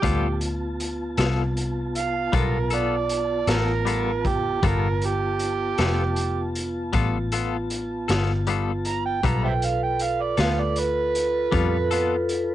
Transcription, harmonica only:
0.00 0.39 G4 medium
1.97 2.34 F5 medium
2.36 2.77 A#4 medium
2.75 3.48 D5 medium
3.51 4.29 A#4 medium
4.28 4.64 G4 medium
4.66 5.07 A#4 medium
5.06 6.53 G4 medium
8.87 9.04 A#5 medium
9.06 9.23 G5 medium
9.25 9.42 A#5 medium
9.44 9.53 C5 soft
9.44 9.53 E5 soft
9.44 9.66 G5 medium
9.64 9.81 F5 medium
9.83 10.04 G5 medium
10.03 10.23 F5 medium
10.22 10.42 D5 medium
10.41 10.61 F5 medium
10.60 10.81 D5 medium
10.79 12.27 B4 loud

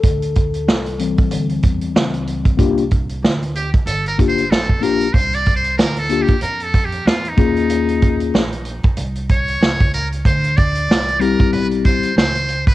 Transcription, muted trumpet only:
3.56 3.70 G4 medium
3.87 4.07 A4 loud
4.08 4.17 A#4 medium
4.28 4.52 C5 loud
4.51 4.84 A4 loud
4.83 5.15 A#4 loud
5.13 5.36 C5 loud
5.35 5.55 D5 loud
5.56 5.76 C5 medium
5.78 6.00 A#4 loud
5.99 6.24 A4 loud
6.22 6.42 G4 loud
6.42 6.64 A#4 loud
6.63 6.86 A4 medium
6.85 7.08 G4 medium
7.07 7.31 F4 medium
7.29 8.24 D#4 medium
9.31 9.90 C#5 loud
9.94 10.08 A#4 medium
10.26 10.58 C5 loud
10.57 11.22 D5 loud
11.21 11.52 A#4 loud
11.53 11.67 B4 loud
11.86 12.15 C5 loud
12.18 12.64 C5 loud
12.68 12.74 B4 loud

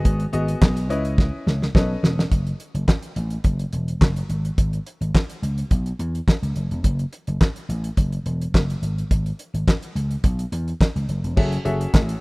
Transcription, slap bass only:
0.05 0.25 G#1 loud
0.33 0.53 G#1 medium
0.62 0.90 B1 loud
0.90 1.29 C#2 loud
1.46 1.66 C#2 medium
1.75 1.94 B1 loud
2.03 2.23 E1 loud
2.31 2.51 F#1 loud
2.74 2.84 F#1 medium
3.16 3.36 A1 medium
3.44 3.64 F#1 loud
3.73 3.93 E1 medium
4.01 4.21 F#1 medium
4.29 4.49 G#1 medium
4.58 4.78 G#1 loud
5.01 5.10 G#1 medium
5.42 5.62 C#2 medium
5.71 5.91 B1 medium
5.99 6.19 E2 medium
6.42 6.52 C#2 medium
6.56 6.66 F#1 medium
6.71 6.80 E1 medium
6.84 7.04 F#1 loud
7.28 7.37 F#1 medium
7.69 7.89 A1 loud
7.97 8.17 F#1 medium
8.26 8.45 E1 medium
8.54 8.74 F#1 medium
8.82 9.02 G#1 medium
9.11 9.30 G#1 medium
9.54 9.63 G#1 medium
9.95 10.15 C#2 medium
10.24 10.44 B1 medium
10.52 10.72 E2 medium
10.96 11.05 C#2 medium
11.09 11.19 F#1 medium
11.24 11.33 E1 medium
11.37 11.57 F#1 loud
11.65 11.85 F#1 medium
11.94 12.13 A1 loud

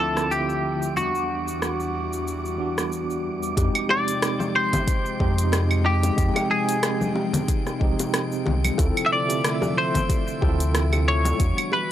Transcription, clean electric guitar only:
0.00 0.32 A4 medium
0.31 0.96 G4 medium
0.97 2.88 F#4 medium
3.90 4.55 D5 loud
4.56 5.90 C5 loud
5.86 6.50 G4 medium
6.51 7.12 G#4 medium
9.06 9.12 E5 medium
9.12 9.78 D5 loud
9.78 11.08 C5 loud
11.08 11.73 C#5 loud
11.73 11.92 B4 medium

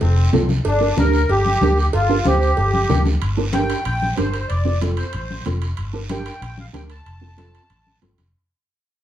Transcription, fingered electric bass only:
0.01 0.27 F1 medium
0.33 0.59 C2 medium
0.65 0.91 G1 medium
0.97 1.23 D2 medium
1.29 1.55 G1 loud
1.61 1.87 D2 medium
1.94 2.19 G1 medium
2.25 2.51 D2 medium
2.58 2.83 G1 medium
2.90 3.16 D2 loud
3.22 3.73 G1 medium
3.86 4.12 A#1 medium
4.18 4.44 G1 medium
4.50 5.01 F1 medium
5.14 5.40 A1 medium
5.46 5.72 F1 medium
5.78 6.29 G1 medium
6.42 6.67 A#1 medium
6.74 6.99 D2 medium
7.06 7.57 F1 medium
7.70 7.96 A1 medium
8.02 8.17 G1 medium
8.19 8.33 F1 medium

